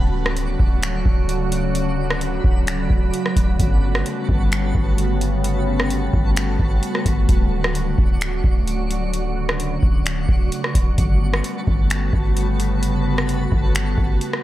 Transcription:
Already playing: 808-style bass D1, ambient pad C#3 D3 F#3 A3 F#4, synth texture F#4 D5 C#6
0.26 cross-stick
0.37 closed hi-hat
0.60 808-style bass D1, kick
0.83 finger snap, closed hi-hat
1.05 808-style bass D1, kick
1.29 closed hi-hat
1.52 closed hi-hat
1.75 synth texture B5, closed hi-hat
2.10 cross-stick
2.21 closed hi-hat
2.44 808-style bass D1, kick
2.67 finger snap, closed hi-hat
2.90 808-style bass D1, kick
3.14 closed hi-hat
3.26 cross-stick
3.36 808-style bass D1, kick, closed hi-hat
3.60 808-style bass G1, ambient pad C#3 G3 B3, synth texture B4 A5 C#6, kick, closed hi-hat
3.95 cross-stick
4.06 closed hi-hat
4.29 808-style bass G1, kick
4.52 finger snap, closed hi-hat
4.75 808-style bass G1, kick
4.98 closed hi-hat
5.21 closed hi-hat
5.44 closed hi-hat
5.80 cross-stick
5.90 closed hi-hat
6.13 808-style bass G1, kick
6.36 finger snap, closed hi-hat
6.59 808-style bass G1, kick
6.83 closed hi-hat
6.95 cross-stick
7.06 808-style bass G1, kick, closed hi-hat
7.29 808-style bass D1, ambient pad C#3 D3 F#3, synth texture F#4 D5, kick, closed hi-hat
7.64 cross-stick
7.75 closed hi-hat
7.98 808-style bass D1, kick
8.21 finger snap, closed hi-hat
8.44 808-style bass D1, kick
8.67 closed hi-hat
8.91 closed hi-hat
9.14 closed hi-hat
9.49 cross-stick
9.60 closed hi-hat
9.83 808-style bass D1, kick
10.06 finger snap, closed hi-hat
10.29 808-style bass D1, kick
10.52 closed hi-hat
10.64 cross-stick
10.75 808-style bass D1, kick, closed hi-hat
10.98 808-style bass G1, ambient pad C#3 G3 A3 B3 F#4, synth texture B4 A5, kick, closed hi-hat
11.34 cross-stick
11.44 closed hi-hat
11.67 808-style bass G1, kick
11.90 finger snap, closed hi-hat
12.13 808-style bass G1, kick
12.37 closed hi-hat
12.60 closed hi-hat
12.83 closed hi-hat
13.18 cross-stick
13.29 closed hi-hat
13.52 808-style bass G1, kick
13.75 finger snap, closed hi-hat
13.98 808-style bass G1, kick
14.21 closed hi-hat
14.33 cross-stick

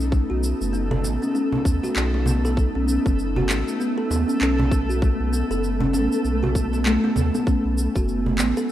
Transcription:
Already playing: sub bass B1, ambient pad A3 B3 D#4, synth texture A3, kalimba C#4
0.00 cabasa
0.12 kick, cabasa
0.30 sub bass B1, kalimba F#4, cajon slap
0.43 cabasa
0.61 sub bass F#1, cabasa
0.73 kalimba B3, cabasa
0.91 kalimba A4, cajon bass
1.04 sub bass A1, cajon slap, cabasa
1.22 kalimba C#4, cabasa
1.35 kalimba C#4, cabasa
1.52 cajon bass
1.65 sub bass D#2, kick, cabasa
1.83 kalimba F#4, cajon slap, cabasa
1.96 sub bass B1, clap, cabasa
2.14 cajon slap
2.26 kalimba B3, cajon bass, cabasa
2.45 kalimba A4, cajon slap, cabasa
2.57 kick, cabasa
2.75 sub bass B1, kalimba C#4, cajon slap
2.88 kalimba C#4, cabasa
3.06 sub bass F#1, kick, cabasa
3.19 cabasa
3.36 kalimba F#4, cajon bass
3.49 sub bass A1, clap, cabasa
3.68 cabasa
3.80 kalimba B3, cabasa
3.98 kalimba A4
4.10 sub bass D#2, cajon slap, cabasa
4.28 kalimba C#4, cabasa
4.41 sub bass B1, kalimba C#4, clap, cabasa
4.58 cajon bass, cajon slap
4.71 kick, cabasa
4.89 kalimba F#4, cabasa
5.02 kick, cabasa
5.20 sub bass B1, cajon slap
5.33 kalimba B3, cabasa
5.50 sub bass F#1, kalimba A4, cabasa
5.64 cabasa
5.80 kalimba C#4, cajon bass
5.93 sub bass A1, kalimba C#4, cajon slap, cabasa
6.12 cabasa
6.24 sub bass B1, cabasa
6.43 kalimba F#4, cajon bass
6.55 kick, cabasa
6.73 cajon slap, cabasa
6.86 kalimba A3, clap, cabasa
7.04 kalimba B3, cajon slap
7.16 sub bass D#2, cajon bass, cabasa
7.34 kalimba B3, cajon slap, cabasa
7.47 kalimba C#4, ambient pad G#5, kick, cabasa
7.65 sub bass B1, cajon slap
7.78 cabasa
7.95 sub bass F#1, kalimba F#4, kick, cabasa
8.09 cabasa
8.26 cajon bass
8.38 sub bass A1, kalimba B3, clap, cabasa
8.57 kalimba A4, cabasa

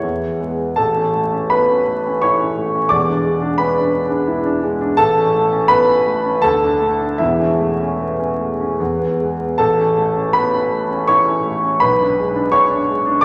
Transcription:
Already playing: grand piano E4 E5, clarinet C#5
0.03 grand piano E2
0.40 grand piano G#3 B3
0.76 grand piano A1 A4 A5
0.95 grand piano C#4
1.15 grand piano A3
1.33 grand piano C#4
1.50 grand piano B3 B4 B5
1.70 grand piano C#4
1.88 grand piano A3
2.07 grand piano C#4
2.22 grand piano E4 C#5 C#6
2.40 grand piano C#4
2.58 grand piano A3
2.75 grand piano C#4
2.89 grand piano E1 E2 D5 D6
3.08 grand piano D4
3.25 grand piano G#3
3.42 grand piano D4
3.58 grand piano C#4 B4 B5
3.76 grand piano D4
3.93 grand piano G#3
4.10 grand piano D4
4.27 grand piano E4
4.46 grand piano D4
4.64 grand piano G#3
4.81 grand piano D4
4.97 grand piano A1 A4 A5
5.18 grand piano C#4
5.35 grand piano A3
5.52 grand piano C#4
5.68 grand piano B3 B4 B5
5.89 grand piano C#4
6.07 grand piano A3
6.25 grand piano C#4
6.42 grand piano D2 A4 A5
6.64 grand piano D4
6.82 grand piano A3
7.01 grand piano D4
7.18 grand piano E1 E2 E4 E5
7.40 grand piano C#4
7.60 grand piano A3
7.80 grand piano C#4
8.00 grand piano B3
8.19 grand piano C#4
8.39 grand piano A3
8.60 grand piano C#4
8.80 grand piano E2
8.99 grand piano B3
9.20 grand piano G#3
9.40 grand piano B3
9.58 grand piano A1 A4 A5
9.79 grand piano C#4
9.98 grand piano A3
10.16 grand piano C#4
10.33 grand piano B3 B4 B5
10.53 grand piano C#4
10.72 grand piano A3
10.91 grand piano C#4
11.08 grand piano E4 C#5 C#6
11.28 grand piano C#4
11.45 grand piano A3
11.64 grand piano C#4
11.80 grand piano B1 B4 B5
12.01 grand piano D4
12.19 grand piano G#3
12.36 grand piano D4
12.52 grand piano C#4 C#5 C#6
12.71 grand piano D4
12.89 grand piano G#3
13.06 grand piano D4
13.21 grand piano D6

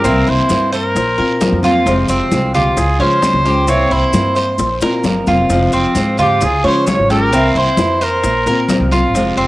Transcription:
Already playing: trumpet A#4
0.04 upright bass C2, nylon-string guitar C3 E3 A#3 C4 E4, cuban tres C4, high bongo, high conga, long guiro, maracas
0.27 upright bass C2, cuban tres E4, trumpet C5, high conga
0.49 upright bass G2, nylon-string guitar E3 A#3 C4 E4, high bongo, high conga, short guiro, maracas
0.72 trumpet A#4, cuban tres C5, high bongo, high conga, short guiro, maracas
0.95 upright bass A#1, muted nylon-string guitar stroke, high bongo, high conga, long guiro, maracas
1.18 upright bass A#2, nylon-string guitar A#3 C4 F4, cuban tres A#4, high bongo, high conga
1.41 nylon-string guitar F3 A#3 C4 F4, high bongo, low bongo, high conga, short guiro, maracas
1.52 upright bass F2
1.63 nylon-string guitar A#3 C4 F4, cuban tres F4, high bongo, high conga, short guiro, maracas
1.86 upright bass F1, nylon-string guitar C3 F3 G#3 C4 F4, high bongo, high conga, long guiro, maracas
2.08 upright bass F1, cuban tres C4, high bongo, high conga, maracas
2.31 upright bass C2, nylon-string guitar F3 G#3 C4 F4, high bongo, high conga, short guiro, maracas
2.54 cuban tres F4, trumpet G4, high conga, low conga, short guiro, maracas
2.77 upright bass C#2, trumpet G#4, muted nylon-string guitar stroke, high bongo, high conga, long guiro, maracas
2.99 upright bass C#3, nylon-string guitar F3 G#3 C#4 F4, cuban tres C#4, trumpet C5, high bongo, high conga
3.21 nylon-string guitar F3 G#3 C#4 F4, high bongo, low bongo, high conga, short guiro, maracas
3.33 upright bass C#2
3.45 nylon-string guitar F3 G#3 C#4 F4, cuban tres G4, high bongo, short guiro, maracas
3.67 upright bass C2, nylon-string guitar C3 E3 A#3 C4 E4, cuban tres C4, trumpet C#5, high bongo, high conga, long guiro, maracas
3.91 upright bass C2, cuban tres E4, trumpet C5, high conga
4.12 upright bass G2, nylon-string guitar E3 A#3 C4 E4, high bongo, high conga, short guiro, maracas
4.36 cuban tres C5, high bongo, high conga, short guiro, maracas
4.58 upright bass A#1, muted nylon-string guitar stroke, high bongo, high conga, long guiro, maracas
4.81 upright bass A#2, nylon-string guitar A#3 C4 F4, cuban tres A#4, high bongo, high conga, maracas
5.04 upright bass G1, nylon-string guitar F3 A#3 C4 F4, low bongo, high conga, short guiro, maracas
5.27 upright bass F1, nylon-string guitar C4 F4, cuban tres F4, low bongo, high conga, short guiro, maracas
5.31 nylon-string guitar A#3
5.50 upright bass F1, nylon-string guitar C3 F3 G#3 C4 F4, high bongo, high conga, long guiro, maracas
5.72 upright bass F1, cuban tres C4, high bongo, high conga, maracas
5.95 upright bass G#2, nylon-string guitar F3 G#3 C4 F4, high bongo, high conga, short guiro, maracas
6.17 cuban tres F4, high conga, low conga, short guiro, maracas
6.21 trumpet G4
6.41 upright bass C#2, trumpet G#4, muted nylon-string guitar stroke, high bongo, high conga, low conga, long guiro, maracas
6.64 upright bass C#3, nylon-string guitar F3 G#3 C#4 F4, trumpet C5, cuban tres C#5, high bongo, high conga
6.87 nylon-string guitar F3 G#3 C#4 F4, trumpet C#5, high bongo, low bongo, high conga, short guiro, maracas
6.98 upright bass G#1
7.09 nylon-string guitar F3 G#3 C#4 F4, cuban tres G4, trumpet A#4, high bongo, high conga, short guiro, maracas
7.32 upright bass C2, nylon-string guitar C3 E3 A#3 C4 E4, cuban tres C4, high bongo, high conga, long guiro, maracas
7.55 upright bass C2, cuban tres E4, trumpet C5, high conga
7.77 upright bass F2, nylon-string guitar E3 A#3 C4 E4, high bongo, high conga, short guiro, maracas
8.01 trumpet A#4, cuban tres C5, high bongo, high conga, short guiro, maracas
8.23 upright bass A#1, muted nylon-string guitar stroke, high bongo, high conga, long guiro, maracas
8.46 upright bass A#2, nylon-string guitar A#3 C4 F4, cuban tres A#4, high bongo, high conga, maracas
8.69 nylon-string guitar F3 A#3 C4 F4, high bongo, low bongo, high conga, short guiro, maracas
8.80 upright bass C2
8.91 nylon-string guitar A#3 C4 F4, cuban tres F4, high bongo, high conga, short guiro, maracas
9.14 upright bass F1, nylon-string guitar C3 F3 G#3 C4 F4, high bongo, high conga, long guiro, maracas
9.37 upright bass F1, cuban tres C4, high bongo, high conga

